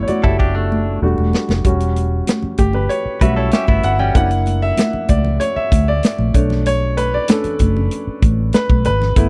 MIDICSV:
0, 0, Header, 1, 6, 480
1, 0, Start_track
1, 0, Tempo, 626305
1, 1267, Time_signature, 4, 2, 24, 8
1, 7121, End_track
2, 0, Start_track
2, 0, Title_t, "Grand piano"
2, 0, Program_c, 0, 0
2, 0, Control_c, 0, 64, 127
2, 0, Note_on_c, 0, 57, 54
2, 0, Note_on_c, 0, 59, 51
2, 0, Note_on_c, 0, 64, 61
2, 0, Note_on_c, 0, 67, 66
2, 0, Note_on_c, 0, 73, 90
2, 0, Note_on_c, 0, 76, 93
2, 21, Note_off_c, 0, 73, 0
2, 21, Note_on_c, 0, 73, 59
2, 57, Note_on_c, 0, 74, 69
2, 66, Note_on_c, 0, 66, 53
2, 178, Note_off_c, 0, 66, 0
2, 180, Note_off_c, 0, 76, 0
2, 180, Note_on_c, 0, 76, 63
2, 185, Note_off_c, 0, 74, 0
2, 192, Note_off_c, 0, 67, 0
2, 192, Note_on_c, 0, 67, 50
2, 783, Note_on_c, 0, 55, 47
2, 787, Note_off_c, 0, 57, 0
2, 787, Note_on_c, 0, 57, 51
2, 788, Note_on_c, 0, 62, 47
2, 791, Note_on_c, 0, 66, 58
2, 796, Control_c, 0, 64, 0
2, 797, Note_off_c, 0, 59, 0
2, 797, Note_off_c, 0, 64, 0
2, 802, Note_off_c, 0, 73, 0
2, 932, Control_c, 0, 64, 127
2, 993, Note_off_c, 0, 76, 0
2, 999, Note_off_c, 0, 67, 0
2, 1241, Note_off_c, 0, 55, 0
2, 1243, Note_off_c, 0, 57, 0
2, 1243, Note_off_c, 0, 62, 0
2, 1245, Note_off_c, 0, 66, 0
2, 1265, Note_on_c, 0, 55, 51
2, 1269, Note_on_c, 0, 61, 48
2, 1274, Note_on_c, 0, 66, 57
2, 1278, Control_c, 0, 64, 0
2, 1415, Control_c, 0, 64, 127
2, 1981, Note_on_c, 0, 67, 76
2, 2103, Note_on_c, 0, 71, 65
2, 2108, Note_off_c, 0, 67, 0
2, 2141, Note_off_c, 0, 71, 0
2, 2217, Note_on_c, 0, 73, 80
2, 2445, Note_off_c, 0, 73, 0
2, 2449, Note_off_c, 0, 55, 0
2, 2451, Note_off_c, 0, 61, 0
2, 2459, Note_off_c, 0, 66, 0
2, 2460, Note_on_c, 0, 55, 46
2, 2463, Note_on_c, 0, 61, 42
2, 2466, Note_on_c, 0, 76, 86
2, 2471, Note_on_c, 0, 66, 52
2, 2587, Note_on_c, 0, 73, 70
2, 2590, Note_off_c, 0, 76, 0
2, 2679, Note_off_c, 0, 55, 0
2, 2681, Note_off_c, 0, 61, 0
2, 2685, Note_off_c, 0, 66, 0
2, 2708, Note_on_c, 0, 76, 89
2, 2710, Note_off_c, 0, 73, 0
2, 2945, Note_on_c, 0, 78, 92
2, 2954, Note_off_c, 0, 76, 0
2, 3061, Note_on_c, 0, 79, 84
2, 3069, Note_off_c, 0, 78, 0
2, 3176, Note_on_c, 0, 58, 58
2, 3182, Note_on_c, 0, 62, 52
2, 3183, Note_on_c, 0, 78, 102
2, 3186, Note_on_c, 0, 64, 60
2, 3188, Note_off_c, 0, 79, 0
2, 3197, Control_c, 0, 64, 0
2, 3320, Control_c, 0, 64, 127
2, 3500, Note_off_c, 0, 58, 0
2, 3503, Note_off_c, 0, 62, 0
2, 3506, Note_off_c, 0, 64, 0
2, 3520, Note_off_c, 0, 78, 0
2, 3544, Note_on_c, 0, 76, 99
2, 3880, Note_off_c, 0, 76, 0
2, 3899, Note_on_c, 0, 74, 75
2, 4137, Note_on_c, 0, 73, 87
2, 4150, Note_off_c, 0, 74, 0
2, 4176, Note_off_c, 0, 73, 0
2, 4264, Note_on_c, 0, 76, 85
2, 4488, Note_off_c, 0, 76, 0
2, 4508, Note_on_c, 0, 74, 86
2, 4859, Note_on_c, 0, 57, 53
2, 4863, Note_on_c, 0, 73, 49
2, 4868, Note_on_c, 0, 62, 58
2, 4877, Control_c, 0, 64, 0
2, 5025, Control_c, 0, 64, 127
2, 5097, Note_off_c, 0, 73, 0
2, 5109, Note_on_c, 0, 73, 101
2, 5125, Note_off_c, 0, 74, 0
2, 5181, Note_off_c, 0, 57, 0
2, 5186, Note_off_c, 0, 62, 0
2, 5344, Note_on_c, 0, 71, 86
2, 5354, Note_off_c, 0, 73, 0
2, 5468, Note_off_c, 0, 71, 0
2, 5473, Note_on_c, 0, 74, 78
2, 5581, Note_on_c, 0, 57, 45
2, 5584, Note_on_c, 0, 61, 39
2, 5587, Note_on_c, 0, 62, 50
2, 5593, Note_off_c, 0, 74, 0
2, 5593, Note_on_c, 0, 69, 64
2, 5799, Note_off_c, 0, 57, 0
2, 5801, Note_off_c, 0, 61, 0
2, 5802, Note_off_c, 0, 62, 0
2, 6038, Note_off_c, 0, 69, 0
2, 6547, Note_on_c, 0, 71, 79
2, 6769, Note_off_c, 0, 71, 0
2, 6787, Note_on_c, 0, 71, 86
2, 7023, Note_on_c, 0, 57, 60
2, 7028, Note_on_c, 0, 59, 54
2, 7033, Control_c, 0, 64, 0
2, 7034, Note_on_c, 0, 64, 69
2, 7121, Note_off_c, 0, 57, 0
2, 7121, Note_off_c, 0, 59, 0
2, 7121, Note_off_c, 0, 64, 0
2, 7121, Note_off_c, 0, 71, 0
2, 7121, End_track
3, 0, Start_track
3, 0, Title_t, "Clean electric guitar"
3, 0, Program_c, 1, 27
3, 181, Note_on_c, 1, 69, 58
3, 184, Note_on_c, 1, 64, 54
3, 297, Note_off_c, 1, 69, 0
3, 299, Note_off_c, 1, 64, 0
3, 300, Note_on_c, 1, 67, 63
3, 304, Note_on_c, 1, 62, 61
3, 411, Note_off_c, 1, 62, 0
3, 417, Note_off_c, 1, 67, 0
3, 420, Note_on_c, 1, 62, 65
3, 425, Note_on_c, 1, 57, 58
3, 765, Note_off_c, 1, 62, 0
3, 768, Note_off_c, 1, 57, 0
3, 2461, Note_on_c, 1, 71, 61
3, 2467, Note_on_c, 1, 66, 48
3, 2574, Note_off_c, 1, 71, 0
3, 2577, Note_on_c, 1, 69, 64
3, 2579, Note_off_c, 1, 66, 0
3, 2582, Note_on_c, 1, 64, 53
3, 2696, Note_off_c, 1, 69, 0
3, 2698, Note_off_c, 1, 64, 0
3, 2704, Note_on_c, 1, 61, 54
3, 2704, Note_on_c, 1, 67, 51
3, 2818, Note_off_c, 1, 67, 0
3, 2819, Note_off_c, 1, 61, 0
3, 2823, Note_on_c, 1, 64, 68
3, 2826, Note_on_c, 1, 59, 52
3, 3053, Note_off_c, 1, 64, 0
3, 3054, Note_off_c, 1, 59, 0
3, 3061, Note_on_c, 1, 61, 57
3, 3067, Note_on_c, 1, 55, 52
3, 3292, Note_off_c, 1, 61, 0
3, 3295, Note_off_c, 1, 55, 0
3, 7121, End_track
4, 0, Start_track
4, 0, Title_t, "Fingered electric bass"
4, 0, Program_c, 2, 33
4, 183, Note_on_c, 2, 30, 70
4, 755, Note_off_c, 2, 30, 0
4, 783, Note_on_c, 2, 28, 90
4, 891, Note_off_c, 2, 28, 0
4, 904, Note_on_c, 2, 28, 76
4, 1012, Note_off_c, 2, 28, 0
4, 1143, Note_on_c, 2, 29, 75
4, 1251, Note_off_c, 2, 29, 0
4, 1261, Note_on_c, 2, 28, 92
4, 1689, Note_off_c, 2, 28, 0
4, 1980, Note_on_c, 2, 31, 83
4, 2196, Note_off_c, 2, 31, 0
4, 2462, Note_on_c, 2, 35, 80
4, 2677, Note_off_c, 2, 35, 0
4, 2822, Note_on_c, 2, 31, 76
4, 2931, Note_off_c, 2, 31, 0
4, 2941, Note_on_c, 2, 31, 78
4, 3157, Note_off_c, 2, 31, 0
4, 3181, Note_on_c, 2, 30, 105
4, 3609, Note_off_c, 2, 30, 0
4, 3903, Note_on_c, 2, 37, 88
4, 4117, Note_off_c, 2, 37, 0
4, 4383, Note_on_c, 2, 38, 78
4, 4597, Note_off_c, 2, 38, 0
4, 4743, Note_on_c, 2, 34, 77
4, 4850, Note_off_c, 2, 34, 0
4, 4862, Note_on_c, 2, 35, 81
4, 5502, Note_off_c, 2, 35, 0
4, 5822, Note_on_c, 2, 30, 82
4, 6036, Note_off_c, 2, 30, 0
4, 6304, Note_on_c, 2, 33, 90
4, 6517, Note_off_c, 2, 33, 0
4, 6665, Note_on_c, 2, 35, 91
4, 6792, Note_on_c, 2, 32, 77
4, 6803, Note_off_c, 2, 35, 0
4, 7001, Note_off_c, 2, 32, 0
4, 7022, Note_on_c, 2, 31, 107
4, 7121, Note_off_c, 2, 31, 0
4, 7121, End_track
5, 0, Start_track
5, 0, Title_t, "Muted fingered electric bass strokes"
5, 67, Note_on_c, 9, 29, 46
5, 143, Note_off_c, 9, 29, 0
5, 1867, Note_on_c, 9, 29, 39
5, 1944, Note_off_c, 9, 29, 0
5, 2341, Note_on_c, 9, 29, 43
5, 2418, Note_off_c, 9, 29, 0
5, 3783, Note_on_c, 9, 29, 41
5, 3860, Note_off_c, 9, 29, 0
5, 4264, Note_on_c, 9, 29, 46
5, 4340, Note_off_c, 9, 29, 0
5, 5705, Note_on_c, 9, 29, 41
5, 5782, Note_off_c, 9, 29, 0
5, 6188, Note_on_c, 9, 29, 47
5, 6264, Note_off_c, 9, 29, 0
5, 7121, End_track
6, 0, Start_track
6, 0, Title_t, "Drums"
6, 57, Note_on_c, 9, 42, 66
6, 73, Note_on_c, 9, 63, 77
6, 134, Note_off_c, 9, 42, 0
6, 150, Note_off_c, 9, 63, 0
6, 183, Note_on_c, 9, 36, 83
6, 260, Note_off_c, 9, 36, 0
6, 305, Note_on_c, 9, 36, 84
6, 381, Note_off_c, 9, 36, 0
6, 552, Note_on_c, 9, 63, 60
6, 629, Note_off_c, 9, 63, 0
6, 903, Note_on_c, 9, 63, 53
6, 980, Note_off_c, 9, 63, 0
6, 1022, Note_on_c, 9, 62, 29
6, 1030, Note_on_c, 9, 38, 85
6, 1098, Note_off_c, 9, 62, 0
6, 1107, Note_off_c, 9, 38, 0
6, 1140, Note_on_c, 9, 64, 60
6, 1150, Note_on_c, 9, 38, 80
6, 1217, Note_off_c, 9, 64, 0
6, 1226, Note_off_c, 9, 38, 0
6, 1260, Note_on_c, 9, 42, 72
6, 1261, Note_on_c, 9, 62, 33
6, 1262, Note_on_c, 9, 36, 98
6, 1337, Note_off_c, 9, 42, 0
6, 1337, Note_off_c, 9, 62, 0
6, 1339, Note_off_c, 9, 36, 0
6, 1382, Note_on_c, 9, 42, 57
6, 1458, Note_off_c, 9, 42, 0
6, 1504, Note_on_c, 9, 42, 65
6, 1504, Note_on_c, 9, 62, 31
6, 1580, Note_off_c, 9, 42, 0
6, 1581, Note_off_c, 9, 62, 0
6, 1740, Note_on_c, 9, 42, 87
6, 1742, Note_on_c, 9, 63, 65
6, 1755, Note_on_c, 9, 38, 99
6, 1817, Note_off_c, 9, 42, 0
6, 1818, Note_off_c, 9, 63, 0
6, 1832, Note_off_c, 9, 38, 0
6, 1858, Note_on_c, 9, 64, 66
6, 1935, Note_off_c, 9, 64, 0
6, 1974, Note_on_c, 9, 42, 65
6, 1982, Note_on_c, 9, 36, 83
6, 1983, Note_on_c, 9, 62, 34
6, 1983, Note_on_c, 9, 63, 80
6, 2050, Note_off_c, 9, 42, 0
6, 2059, Note_off_c, 9, 36, 0
6, 2059, Note_off_c, 9, 62, 0
6, 2059, Note_off_c, 9, 63, 0
6, 2094, Note_on_c, 9, 64, 68
6, 2171, Note_off_c, 9, 64, 0
6, 2221, Note_on_c, 9, 62, 30
6, 2223, Note_on_c, 9, 42, 67
6, 2297, Note_off_c, 9, 62, 0
6, 2300, Note_off_c, 9, 42, 0
6, 2461, Note_on_c, 9, 42, 68
6, 2462, Note_on_c, 9, 36, 92
6, 2463, Note_on_c, 9, 62, 28
6, 2463, Note_on_c, 9, 63, 58
6, 2537, Note_off_c, 9, 42, 0
6, 2538, Note_off_c, 9, 36, 0
6, 2540, Note_off_c, 9, 62, 0
6, 2540, Note_off_c, 9, 63, 0
6, 2693, Note_on_c, 9, 42, 75
6, 2699, Note_on_c, 9, 62, 31
6, 2706, Note_on_c, 9, 38, 94
6, 2769, Note_off_c, 9, 42, 0
6, 2775, Note_off_c, 9, 62, 0
6, 2783, Note_off_c, 9, 38, 0
6, 2816, Note_on_c, 9, 63, 59
6, 2822, Note_on_c, 9, 36, 99
6, 2892, Note_off_c, 9, 63, 0
6, 2899, Note_off_c, 9, 36, 0
6, 2937, Note_on_c, 9, 42, 62
6, 3013, Note_off_c, 9, 42, 0
6, 3059, Note_on_c, 9, 64, 57
6, 3135, Note_off_c, 9, 64, 0
6, 3179, Note_on_c, 9, 42, 83
6, 3180, Note_on_c, 9, 36, 99
6, 3256, Note_off_c, 9, 42, 0
6, 3257, Note_off_c, 9, 36, 0
6, 3300, Note_on_c, 9, 42, 55
6, 3376, Note_off_c, 9, 42, 0
6, 3418, Note_on_c, 9, 62, 32
6, 3423, Note_on_c, 9, 42, 69
6, 3495, Note_off_c, 9, 62, 0
6, 3500, Note_off_c, 9, 42, 0
6, 3657, Note_on_c, 9, 42, 91
6, 3659, Note_on_c, 9, 62, 34
6, 3659, Note_on_c, 9, 63, 72
6, 3672, Note_on_c, 9, 38, 106
6, 3734, Note_off_c, 9, 42, 0
6, 3736, Note_off_c, 9, 62, 0
6, 3736, Note_off_c, 9, 63, 0
6, 3749, Note_off_c, 9, 38, 0
6, 3780, Note_on_c, 9, 64, 66
6, 3857, Note_off_c, 9, 64, 0
6, 3896, Note_on_c, 9, 42, 67
6, 3902, Note_on_c, 9, 36, 86
6, 3907, Note_on_c, 9, 62, 37
6, 3907, Note_on_c, 9, 63, 74
6, 3973, Note_off_c, 9, 42, 0
6, 3979, Note_off_c, 9, 36, 0
6, 3984, Note_off_c, 9, 62, 0
6, 3984, Note_off_c, 9, 63, 0
6, 4021, Note_on_c, 9, 64, 72
6, 4097, Note_off_c, 9, 64, 0
6, 4142, Note_on_c, 9, 62, 34
6, 4143, Note_on_c, 9, 42, 77
6, 4218, Note_off_c, 9, 62, 0
6, 4220, Note_off_c, 9, 42, 0
6, 4382, Note_on_c, 9, 62, 28
6, 4382, Note_on_c, 9, 63, 60
6, 4383, Note_on_c, 9, 36, 101
6, 4387, Note_on_c, 9, 42, 67
6, 4459, Note_off_c, 9, 36, 0
6, 4459, Note_off_c, 9, 62, 0
6, 4459, Note_off_c, 9, 63, 0
6, 4463, Note_off_c, 9, 42, 0
6, 4620, Note_on_c, 9, 42, 80
6, 4634, Note_on_c, 9, 38, 103
6, 4697, Note_off_c, 9, 42, 0
6, 4710, Note_off_c, 9, 38, 0
6, 4740, Note_on_c, 9, 63, 55
6, 4817, Note_off_c, 9, 63, 0
6, 4861, Note_on_c, 9, 42, 66
6, 4862, Note_on_c, 9, 36, 94
6, 4938, Note_off_c, 9, 42, 0
6, 4939, Note_off_c, 9, 36, 0
6, 4982, Note_on_c, 9, 64, 68
6, 4992, Note_on_c, 9, 38, 35
6, 5058, Note_off_c, 9, 64, 0
6, 5069, Note_off_c, 9, 38, 0
6, 5102, Note_on_c, 9, 42, 82
6, 5108, Note_on_c, 9, 62, 35
6, 5178, Note_off_c, 9, 42, 0
6, 5185, Note_off_c, 9, 62, 0
6, 5344, Note_on_c, 9, 42, 69
6, 5348, Note_on_c, 9, 62, 31
6, 5421, Note_off_c, 9, 42, 0
6, 5424, Note_off_c, 9, 62, 0
6, 5578, Note_on_c, 9, 42, 90
6, 5589, Note_on_c, 9, 62, 34
6, 5589, Note_on_c, 9, 63, 68
6, 5593, Note_on_c, 9, 38, 113
6, 5654, Note_off_c, 9, 42, 0
6, 5665, Note_off_c, 9, 62, 0
6, 5665, Note_off_c, 9, 63, 0
6, 5670, Note_off_c, 9, 38, 0
6, 5700, Note_on_c, 9, 42, 52
6, 5710, Note_on_c, 9, 64, 70
6, 5776, Note_off_c, 9, 42, 0
6, 5786, Note_off_c, 9, 64, 0
6, 5816, Note_on_c, 9, 42, 65
6, 5824, Note_on_c, 9, 36, 86
6, 5836, Note_on_c, 9, 63, 74
6, 5893, Note_off_c, 9, 42, 0
6, 5900, Note_off_c, 9, 36, 0
6, 5913, Note_off_c, 9, 63, 0
6, 5952, Note_on_c, 9, 64, 70
6, 6029, Note_off_c, 9, 64, 0
6, 6063, Note_on_c, 9, 42, 75
6, 6074, Note_on_c, 9, 62, 33
6, 6139, Note_off_c, 9, 42, 0
6, 6151, Note_off_c, 9, 62, 0
6, 6302, Note_on_c, 9, 42, 72
6, 6303, Note_on_c, 9, 36, 98
6, 6318, Note_on_c, 9, 63, 64
6, 6379, Note_off_c, 9, 42, 0
6, 6380, Note_off_c, 9, 36, 0
6, 6395, Note_off_c, 9, 63, 0
6, 6535, Note_on_c, 9, 42, 81
6, 6549, Note_on_c, 9, 38, 103
6, 6555, Note_on_c, 9, 62, 33
6, 6612, Note_off_c, 9, 42, 0
6, 6625, Note_off_c, 9, 38, 0
6, 6632, Note_off_c, 9, 62, 0
6, 6665, Note_on_c, 9, 36, 99
6, 6671, Note_on_c, 9, 63, 62
6, 6741, Note_off_c, 9, 36, 0
6, 6748, Note_off_c, 9, 63, 0
6, 6778, Note_on_c, 9, 42, 70
6, 6789, Note_on_c, 9, 62, 30
6, 6855, Note_off_c, 9, 42, 0
6, 6865, Note_off_c, 9, 62, 0
6, 6910, Note_on_c, 9, 64, 60
6, 6911, Note_on_c, 9, 38, 35
6, 6987, Note_off_c, 9, 64, 0
6, 6988, Note_off_c, 9, 38, 0
6, 7021, Note_on_c, 9, 42, 81
6, 7023, Note_on_c, 9, 36, 106
6, 7098, Note_off_c, 9, 42, 0
6, 7100, Note_off_c, 9, 36, 0
6, 7121, End_track
0, 0, End_of_file